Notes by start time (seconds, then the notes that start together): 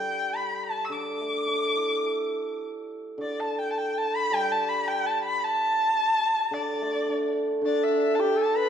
Already playing: D3 G3 G5
0.36 B5
0.64 A5
0.85 E6
0.89 D3 D6
1.21 A3
1.48 D4
1.76 E4
2.05 A4
3.18 D3 D5
3.40 A5
3.59 G5
3.72 A5
3.78 G5
3.98 A5
4.16 B5
4.31 G3 G5
4.52 A5
4.69 B5
4.88 G5
5.06 A5
5.25 B5
5.44 A5
6.51 D3 D5
6.81 A3
7.09 D4
7.61 D3 D4
7.66 D5
7.83 E5
8.02 E5
8.16 G4 A5
8.20 G5
8.36 A4 A5
8.56 B4 B5